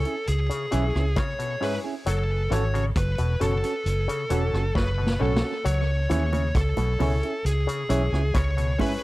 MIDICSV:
0, 0, Header, 1, 7, 480
1, 0, Start_track
1, 0, Key_signature, 4, "minor"
1, 0, Tempo, 896861
1, 1104, Time_signature, 4, 2, 24, 8
1, 4835, End_track
2, 0, Start_track
2, 0, Title_t, "Lead electric guitar"
2, 0, Program_c, 0, 29
2, 0, Note_on_c, 0, 69, 88
2, 149, Note_off_c, 0, 69, 0
2, 151, Note_on_c, 0, 68, 85
2, 634, Note_on_c, 0, 73, 89
2, 642, Note_off_c, 0, 68, 0
2, 874, Note_on_c, 0, 71, 90
2, 876, Note_off_c, 0, 73, 0
2, 937, Note_off_c, 0, 71, 0
2, 1113, Note_on_c, 0, 69, 99
2, 1352, Note_on_c, 0, 73, 94
2, 1356, Note_off_c, 0, 69, 0
2, 1469, Note_off_c, 0, 73, 0
2, 1475, Note_on_c, 0, 73, 86
2, 1506, Note_off_c, 0, 73, 0
2, 1593, Note_on_c, 0, 71, 98
2, 1830, Note_off_c, 0, 71, 0
2, 1832, Note_on_c, 0, 69, 101
2, 2527, Note_off_c, 0, 69, 0
2, 2550, Note_on_c, 0, 71, 88
2, 2791, Note_off_c, 0, 71, 0
2, 2794, Note_on_c, 0, 69, 88
2, 3030, Note_off_c, 0, 69, 0
2, 3032, Note_on_c, 0, 73, 104
2, 3268, Note_off_c, 0, 73, 0
2, 3274, Note_on_c, 0, 73, 82
2, 3510, Note_on_c, 0, 69, 92
2, 3516, Note_off_c, 0, 73, 0
2, 3991, Note_off_c, 0, 69, 0
2, 3993, Note_on_c, 0, 68, 89
2, 4476, Note_on_c, 0, 73, 89
2, 4483, Note_off_c, 0, 68, 0
2, 4694, Note_off_c, 0, 73, 0
2, 4713, Note_on_c, 0, 71, 98
2, 4835, Note_off_c, 0, 71, 0
2, 4835, End_track
3, 0, Start_track
3, 0, Title_t, "Upright piano"
3, 0, Program_c, 1, 0
3, 380, Note_on_c, 1, 61, 96
3, 382, Note_on_c, 1, 64, 90
3, 384, Note_on_c, 1, 68, 90
3, 386, Note_on_c, 1, 73, 102
3, 491, Note_off_c, 1, 61, 0
3, 492, Note_off_c, 1, 64, 0
3, 493, Note_off_c, 1, 68, 0
3, 494, Note_off_c, 1, 73, 0
3, 859, Note_on_c, 1, 61, 86
3, 860, Note_on_c, 1, 64, 76
3, 863, Note_on_c, 1, 68, 89
3, 865, Note_on_c, 1, 73, 107
3, 970, Note_off_c, 1, 61, 0
3, 971, Note_off_c, 1, 64, 0
3, 972, Note_off_c, 1, 68, 0
3, 973, Note_off_c, 1, 73, 0
3, 1337, Note_on_c, 1, 61, 83
3, 1340, Note_on_c, 1, 66, 72
3, 1342, Note_on_c, 1, 69, 71
3, 1344, Note_on_c, 1, 73, 84
3, 1449, Note_off_c, 1, 61, 0
3, 1451, Note_off_c, 1, 66, 0
3, 1452, Note_off_c, 1, 69, 0
3, 1453, Note_off_c, 1, 73, 0
3, 1818, Note_on_c, 1, 61, 85
3, 1820, Note_on_c, 1, 66, 86
3, 1822, Note_on_c, 1, 69, 87
3, 1825, Note_on_c, 1, 73, 89
3, 1930, Note_off_c, 1, 61, 0
3, 1931, Note_off_c, 1, 66, 0
3, 1932, Note_off_c, 1, 69, 0
3, 1933, Note_off_c, 1, 73, 0
3, 2298, Note_on_c, 1, 61, 87
3, 2301, Note_on_c, 1, 66, 88
3, 2303, Note_on_c, 1, 69, 84
3, 2306, Note_on_c, 1, 73, 101
3, 2410, Note_off_c, 1, 61, 0
3, 2411, Note_off_c, 1, 66, 0
3, 2412, Note_off_c, 1, 69, 0
3, 2414, Note_off_c, 1, 73, 0
3, 2779, Note_on_c, 1, 61, 97
3, 2781, Note_on_c, 1, 66, 84
3, 2782, Note_on_c, 1, 69, 84
3, 2785, Note_on_c, 1, 73, 102
3, 2890, Note_off_c, 1, 61, 0
3, 2891, Note_off_c, 1, 66, 0
3, 2892, Note_off_c, 1, 69, 0
3, 2893, Note_off_c, 1, 73, 0
3, 3260, Note_on_c, 1, 61, 86
3, 3263, Note_on_c, 1, 64, 79
3, 3264, Note_on_c, 1, 68, 67
3, 3267, Note_on_c, 1, 73, 86
3, 3371, Note_off_c, 1, 61, 0
3, 3372, Note_off_c, 1, 64, 0
3, 3373, Note_off_c, 1, 68, 0
3, 3374, Note_off_c, 1, 73, 0
3, 3740, Note_on_c, 1, 61, 83
3, 3742, Note_on_c, 1, 64, 78
3, 3744, Note_on_c, 1, 68, 75
3, 3747, Note_on_c, 1, 73, 89
3, 3851, Note_off_c, 1, 61, 0
3, 3852, Note_off_c, 1, 64, 0
3, 3853, Note_off_c, 1, 68, 0
3, 3854, Note_off_c, 1, 73, 0
3, 4222, Note_on_c, 1, 61, 84
3, 4224, Note_on_c, 1, 64, 76
3, 4227, Note_on_c, 1, 68, 80
3, 4228, Note_on_c, 1, 73, 100
3, 4332, Note_off_c, 1, 61, 0
3, 4333, Note_off_c, 1, 64, 0
3, 4334, Note_off_c, 1, 68, 0
3, 4335, Note_off_c, 1, 73, 0
3, 4701, Note_on_c, 1, 61, 100
3, 4704, Note_on_c, 1, 64, 86
3, 4706, Note_on_c, 1, 68, 82
3, 4708, Note_on_c, 1, 73, 104
3, 4812, Note_off_c, 1, 61, 0
3, 4813, Note_off_c, 1, 64, 0
3, 4814, Note_off_c, 1, 68, 0
3, 4815, Note_off_c, 1, 73, 0
3, 4835, End_track
4, 0, Start_track
4, 0, Title_t, "Clean electric guitar"
4, 0, Program_c, 2, 27
4, 28, Note_on_c, 2, 68, 64
4, 31, Note_on_c, 2, 64, 56
4, 35, Note_on_c, 2, 61, 45
4, 75, Note_off_c, 2, 68, 0
4, 76, Note_off_c, 2, 64, 0
4, 78, Note_off_c, 2, 61, 0
4, 386, Note_on_c, 2, 61, 88
4, 391, Note_on_c, 2, 64, 89
4, 394, Note_on_c, 2, 68, 86
4, 448, Note_off_c, 2, 61, 0
4, 450, Note_off_c, 2, 64, 0
4, 452, Note_off_c, 2, 68, 0
4, 506, Note_on_c, 2, 68, 68
4, 512, Note_on_c, 2, 64, 56
4, 514, Note_on_c, 2, 61, 56
4, 554, Note_off_c, 2, 68, 0
4, 557, Note_off_c, 2, 61, 0
4, 557, Note_off_c, 2, 64, 0
4, 860, Note_on_c, 2, 61, 69
4, 864, Note_on_c, 2, 64, 74
4, 868, Note_on_c, 2, 68, 84
4, 924, Note_off_c, 2, 61, 0
4, 927, Note_off_c, 2, 64, 0
4, 929, Note_off_c, 2, 68, 0
4, 985, Note_on_c, 2, 68, 64
4, 990, Note_on_c, 2, 64, 50
4, 992, Note_on_c, 2, 61, 53
4, 1033, Note_off_c, 2, 68, 0
4, 1036, Note_off_c, 2, 64, 0
4, 1037, Note_off_c, 2, 61, 0
4, 1340, Note_on_c, 2, 61, 80
4, 1345, Note_on_c, 2, 66, 97
4, 1350, Note_on_c, 2, 69, 105
4, 1405, Note_off_c, 2, 61, 0
4, 1407, Note_off_c, 2, 66, 0
4, 1410, Note_off_c, 2, 69, 0
4, 1466, Note_on_c, 2, 69, 59
4, 1469, Note_on_c, 2, 66, 51
4, 1475, Note_on_c, 2, 61, 44
4, 1513, Note_off_c, 2, 69, 0
4, 1515, Note_off_c, 2, 66, 0
4, 1518, Note_off_c, 2, 61, 0
4, 1823, Note_on_c, 2, 61, 69
4, 1829, Note_on_c, 2, 66, 75
4, 1832, Note_on_c, 2, 69, 74
4, 1886, Note_off_c, 2, 61, 0
4, 1889, Note_off_c, 2, 66, 0
4, 1891, Note_off_c, 2, 69, 0
4, 1944, Note_on_c, 2, 69, 67
4, 1949, Note_on_c, 2, 66, 60
4, 1952, Note_on_c, 2, 61, 57
4, 1992, Note_off_c, 2, 69, 0
4, 1995, Note_off_c, 2, 66, 0
4, 1996, Note_off_c, 2, 61, 0
4, 2304, Note_on_c, 2, 61, 94
4, 2309, Note_on_c, 2, 66, 87
4, 2311, Note_on_c, 2, 69, 88
4, 2366, Note_off_c, 2, 61, 0
4, 2369, Note_off_c, 2, 66, 0
4, 2370, Note_off_c, 2, 69, 0
4, 2425, Note_on_c, 2, 69, 64
4, 2430, Note_on_c, 2, 66, 59
4, 2435, Note_on_c, 2, 61, 49
4, 2473, Note_off_c, 2, 69, 0
4, 2476, Note_off_c, 2, 66, 0
4, 2478, Note_off_c, 2, 61, 0
4, 2784, Note_on_c, 2, 61, 74
4, 2788, Note_on_c, 2, 66, 77
4, 2792, Note_on_c, 2, 69, 73
4, 2847, Note_off_c, 2, 61, 0
4, 2848, Note_off_c, 2, 66, 0
4, 2851, Note_off_c, 2, 69, 0
4, 2906, Note_on_c, 2, 69, 60
4, 2911, Note_on_c, 2, 66, 56
4, 2915, Note_on_c, 2, 61, 47
4, 2954, Note_off_c, 2, 69, 0
4, 2956, Note_off_c, 2, 66, 0
4, 2958, Note_off_c, 2, 61, 0
4, 3268, Note_on_c, 2, 61, 84
4, 3273, Note_on_c, 2, 64, 102
4, 3277, Note_on_c, 2, 68, 121
4, 3329, Note_off_c, 2, 61, 0
4, 3331, Note_off_c, 2, 64, 0
4, 3333, Note_off_c, 2, 68, 0
4, 3388, Note_on_c, 2, 68, 57
4, 3394, Note_on_c, 2, 64, 52
4, 3397, Note_on_c, 2, 61, 49
4, 3435, Note_off_c, 2, 68, 0
4, 3438, Note_off_c, 2, 64, 0
4, 3439, Note_off_c, 2, 61, 0
4, 3747, Note_on_c, 2, 61, 71
4, 3751, Note_on_c, 2, 64, 86
4, 3755, Note_on_c, 2, 68, 89
4, 3808, Note_off_c, 2, 61, 0
4, 3810, Note_off_c, 2, 64, 0
4, 3812, Note_off_c, 2, 68, 0
4, 3870, Note_on_c, 2, 68, 58
4, 3875, Note_on_c, 2, 64, 54
4, 3880, Note_on_c, 2, 61, 46
4, 3916, Note_off_c, 2, 68, 0
4, 3918, Note_off_c, 2, 64, 0
4, 3921, Note_off_c, 2, 61, 0
4, 4225, Note_on_c, 2, 61, 99
4, 4230, Note_on_c, 2, 64, 99
4, 4233, Note_on_c, 2, 68, 92
4, 4287, Note_off_c, 2, 61, 0
4, 4290, Note_off_c, 2, 64, 0
4, 4292, Note_off_c, 2, 68, 0
4, 4349, Note_on_c, 2, 68, 64
4, 4353, Note_on_c, 2, 64, 59
4, 4356, Note_on_c, 2, 61, 54
4, 4395, Note_off_c, 2, 68, 0
4, 4397, Note_off_c, 2, 64, 0
4, 4399, Note_off_c, 2, 61, 0
4, 4706, Note_on_c, 2, 61, 85
4, 4711, Note_on_c, 2, 64, 81
4, 4715, Note_on_c, 2, 68, 77
4, 4768, Note_off_c, 2, 61, 0
4, 4771, Note_off_c, 2, 64, 0
4, 4773, Note_off_c, 2, 68, 0
4, 4835, End_track
5, 0, Start_track
5, 0, Title_t, "Clav"
5, 0, Program_c, 3, 7
5, 265, Note_on_c, 3, 49, 62
5, 354, Note_off_c, 3, 49, 0
5, 383, Note_on_c, 3, 52, 62
5, 474, Note_off_c, 3, 52, 0
5, 622, Note_on_c, 3, 49, 77
5, 713, Note_off_c, 3, 49, 0
5, 743, Note_on_c, 3, 47, 75
5, 832, Note_off_c, 3, 47, 0
5, 861, Note_on_c, 3, 44, 90
5, 953, Note_off_c, 3, 44, 0
5, 1103, Note_on_c, 3, 54, 86
5, 1194, Note_off_c, 3, 54, 0
5, 1345, Note_on_c, 3, 52, 77
5, 1435, Note_off_c, 3, 52, 0
5, 1465, Note_on_c, 3, 49, 82
5, 1553, Note_off_c, 3, 49, 0
5, 1704, Note_on_c, 3, 47, 65
5, 1793, Note_off_c, 3, 47, 0
5, 1825, Note_on_c, 3, 47, 80
5, 1915, Note_off_c, 3, 47, 0
5, 2184, Note_on_c, 3, 49, 73
5, 2273, Note_off_c, 3, 49, 0
5, 2303, Note_on_c, 3, 52, 72
5, 2394, Note_off_c, 3, 52, 0
5, 2542, Note_on_c, 3, 49, 69
5, 2633, Note_off_c, 3, 49, 0
5, 2664, Note_on_c, 3, 47, 68
5, 2753, Note_off_c, 3, 47, 0
5, 2782, Note_on_c, 3, 45, 86
5, 2873, Note_off_c, 3, 45, 0
5, 3022, Note_on_c, 3, 54, 81
5, 3113, Note_off_c, 3, 54, 0
5, 3263, Note_on_c, 3, 52, 73
5, 3354, Note_off_c, 3, 52, 0
5, 3385, Note_on_c, 3, 49, 72
5, 3474, Note_off_c, 3, 49, 0
5, 3624, Note_on_c, 3, 47, 74
5, 3713, Note_off_c, 3, 47, 0
5, 3743, Note_on_c, 3, 47, 79
5, 3834, Note_off_c, 3, 47, 0
5, 4106, Note_on_c, 3, 49, 72
5, 4194, Note_off_c, 3, 49, 0
5, 4225, Note_on_c, 3, 52, 70
5, 4315, Note_off_c, 3, 52, 0
5, 4464, Note_on_c, 3, 49, 81
5, 4555, Note_off_c, 3, 49, 0
5, 4587, Note_on_c, 3, 47, 77
5, 4675, Note_off_c, 3, 47, 0
5, 4702, Note_on_c, 3, 44, 88
5, 4794, Note_off_c, 3, 44, 0
5, 4835, End_track
6, 0, Start_track
6, 0, Title_t, "Fingered electric bass"
6, 0, Program_c, 4, 33
6, 150, Note_on_c, 4, 37, 98
6, 258, Note_off_c, 4, 37, 0
6, 390, Note_on_c, 4, 35, 86
6, 498, Note_off_c, 4, 35, 0
6, 511, Note_on_c, 4, 37, 85
6, 616, Note_off_c, 4, 37, 0
6, 1106, Note_on_c, 4, 30, 89
6, 1324, Note_off_c, 4, 30, 0
6, 1346, Note_on_c, 4, 32, 101
6, 1563, Note_off_c, 4, 32, 0
6, 1585, Note_on_c, 4, 30, 102
6, 1695, Note_off_c, 4, 30, 0
6, 1707, Note_on_c, 4, 28, 77
6, 1814, Note_off_c, 4, 28, 0
6, 1824, Note_on_c, 4, 30, 90
6, 1935, Note_off_c, 4, 30, 0
6, 2064, Note_on_c, 4, 30, 82
6, 2175, Note_off_c, 4, 30, 0
6, 2304, Note_on_c, 4, 28, 80
6, 2415, Note_off_c, 4, 28, 0
6, 2426, Note_on_c, 4, 30, 82
6, 2534, Note_off_c, 4, 30, 0
6, 2546, Note_on_c, 4, 30, 91
6, 2764, Note_off_c, 4, 30, 0
6, 2789, Note_on_c, 4, 35, 78
6, 2897, Note_off_c, 4, 35, 0
6, 3027, Note_on_c, 4, 37, 105
6, 3244, Note_off_c, 4, 37, 0
6, 3267, Note_on_c, 4, 39, 92
6, 3484, Note_off_c, 4, 39, 0
6, 3505, Note_on_c, 4, 37, 89
6, 3615, Note_off_c, 4, 37, 0
6, 3625, Note_on_c, 4, 35, 92
6, 3733, Note_off_c, 4, 35, 0
6, 3747, Note_on_c, 4, 37, 88
6, 3856, Note_off_c, 4, 37, 0
6, 3987, Note_on_c, 4, 37, 83
6, 4096, Note_off_c, 4, 37, 0
6, 4227, Note_on_c, 4, 35, 92
6, 4336, Note_off_c, 4, 35, 0
6, 4349, Note_on_c, 4, 37, 90
6, 4456, Note_off_c, 4, 37, 0
6, 4469, Note_on_c, 4, 37, 87
6, 4685, Note_off_c, 4, 37, 0
6, 4835, End_track
7, 0, Start_track
7, 0, Title_t, "Drums"
7, 26, Note_on_c, 9, 42, 49
7, 80, Note_off_c, 9, 42, 0
7, 146, Note_on_c, 9, 42, 69
7, 199, Note_off_c, 9, 42, 0
7, 270, Note_on_c, 9, 42, 53
7, 323, Note_off_c, 9, 42, 0
7, 383, Note_on_c, 9, 42, 72
7, 437, Note_off_c, 9, 42, 0
7, 513, Note_on_c, 9, 37, 65
7, 566, Note_off_c, 9, 37, 0
7, 621, Note_on_c, 9, 42, 94
7, 625, Note_on_c, 9, 36, 106
7, 631, Note_on_c, 9, 37, 118
7, 675, Note_off_c, 9, 42, 0
7, 678, Note_off_c, 9, 36, 0
7, 685, Note_off_c, 9, 37, 0
7, 746, Note_on_c, 9, 42, 58
7, 800, Note_off_c, 9, 42, 0
7, 869, Note_on_c, 9, 46, 74
7, 922, Note_off_c, 9, 46, 0
7, 1104, Note_on_c, 9, 42, 90
7, 1158, Note_off_c, 9, 42, 0
7, 1346, Note_on_c, 9, 42, 73
7, 1400, Note_off_c, 9, 42, 0
7, 1471, Note_on_c, 9, 42, 39
7, 1524, Note_off_c, 9, 42, 0
7, 1582, Note_on_c, 9, 42, 96
7, 1583, Note_on_c, 9, 36, 115
7, 1589, Note_on_c, 9, 37, 106
7, 1636, Note_off_c, 9, 42, 0
7, 1637, Note_off_c, 9, 36, 0
7, 1642, Note_off_c, 9, 37, 0
7, 1702, Note_on_c, 9, 42, 51
7, 1756, Note_off_c, 9, 42, 0
7, 1825, Note_on_c, 9, 42, 68
7, 1878, Note_off_c, 9, 42, 0
7, 1946, Note_on_c, 9, 42, 56
7, 1999, Note_off_c, 9, 42, 0
7, 2065, Note_on_c, 9, 42, 67
7, 2119, Note_off_c, 9, 42, 0
7, 2189, Note_on_c, 9, 42, 56
7, 2242, Note_off_c, 9, 42, 0
7, 2301, Note_on_c, 9, 42, 68
7, 2355, Note_off_c, 9, 42, 0
7, 2431, Note_on_c, 9, 37, 62
7, 2485, Note_off_c, 9, 37, 0
7, 2544, Note_on_c, 9, 36, 95
7, 2550, Note_on_c, 9, 38, 56
7, 2597, Note_off_c, 9, 36, 0
7, 2604, Note_off_c, 9, 38, 0
7, 2711, Note_on_c, 9, 38, 69
7, 2765, Note_off_c, 9, 38, 0
7, 2871, Note_on_c, 9, 38, 98
7, 2925, Note_off_c, 9, 38, 0
7, 3025, Note_on_c, 9, 42, 90
7, 3079, Note_off_c, 9, 42, 0
7, 3265, Note_on_c, 9, 60, 49
7, 3267, Note_on_c, 9, 42, 62
7, 3318, Note_off_c, 9, 60, 0
7, 3321, Note_off_c, 9, 42, 0
7, 3387, Note_on_c, 9, 60, 69
7, 3393, Note_on_c, 9, 42, 41
7, 3440, Note_off_c, 9, 60, 0
7, 3446, Note_off_c, 9, 42, 0
7, 3505, Note_on_c, 9, 36, 113
7, 3506, Note_on_c, 9, 42, 89
7, 3512, Note_on_c, 9, 37, 108
7, 3558, Note_off_c, 9, 36, 0
7, 3559, Note_off_c, 9, 42, 0
7, 3566, Note_off_c, 9, 37, 0
7, 3623, Note_on_c, 9, 60, 68
7, 3626, Note_on_c, 9, 42, 57
7, 3676, Note_off_c, 9, 60, 0
7, 3680, Note_off_c, 9, 42, 0
7, 3748, Note_on_c, 9, 46, 46
7, 3749, Note_on_c, 9, 61, 77
7, 3801, Note_off_c, 9, 46, 0
7, 3802, Note_off_c, 9, 61, 0
7, 3869, Note_on_c, 9, 42, 50
7, 3923, Note_off_c, 9, 42, 0
7, 3990, Note_on_c, 9, 42, 74
7, 4044, Note_off_c, 9, 42, 0
7, 4113, Note_on_c, 9, 42, 55
7, 4166, Note_off_c, 9, 42, 0
7, 4226, Note_on_c, 9, 42, 78
7, 4280, Note_off_c, 9, 42, 0
7, 4355, Note_on_c, 9, 37, 62
7, 4409, Note_off_c, 9, 37, 0
7, 4465, Note_on_c, 9, 42, 93
7, 4467, Note_on_c, 9, 36, 106
7, 4475, Note_on_c, 9, 37, 116
7, 4519, Note_off_c, 9, 42, 0
7, 4521, Note_off_c, 9, 36, 0
7, 4528, Note_off_c, 9, 37, 0
7, 4591, Note_on_c, 9, 42, 53
7, 4644, Note_off_c, 9, 42, 0
7, 4707, Note_on_c, 9, 36, 63
7, 4707, Note_on_c, 9, 60, 65
7, 4707, Note_on_c, 9, 61, 71
7, 4714, Note_on_c, 9, 46, 86
7, 4760, Note_off_c, 9, 36, 0
7, 4761, Note_off_c, 9, 60, 0
7, 4761, Note_off_c, 9, 61, 0
7, 4768, Note_off_c, 9, 46, 0
7, 4835, End_track
0, 0, End_of_file